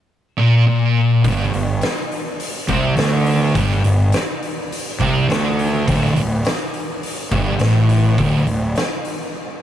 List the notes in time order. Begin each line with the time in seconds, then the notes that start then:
0.39 A#2
0.68 A#2
1.24 G1 G2, kick, open hi-hat
1.54 G1 G2, open hi-hat
1.81 snare, open hi-hat
2.12 open hi-hat
2.40 open hi-hat
2.68 C2 C3, kick, open hi-hat
2.97 D2 D3, snare, open hi-hat
3.26 open hi-hat
3.54 G1 G2, kick, open hi-hat
3.84 G1 G2, open hi-hat
4.12 snare, open hi-hat
4.43 open hi-hat
4.72 open hi-hat
4.99 C2 C3, kick, open hi-hat
5.29 D2 D3, snare, open hi-hat
5.59 open hi-hat
5.87 D1 D2, kick, open hi-hat
6.16 D1 D2, open hi-hat
6.45 snare, open hi-hat
6.74 open hi-hat
7.03 open hi-hat
7.31 G1 G2, kick, open hi-hat
7.59 A1 A2, snare, open hi-hat
7.89 open hi-hat
8.18 D1 D2, kick, open hi-hat
8.47 D1 D2, open hi-hat
8.76 snare, open hi-hat
9.05 open hi-hat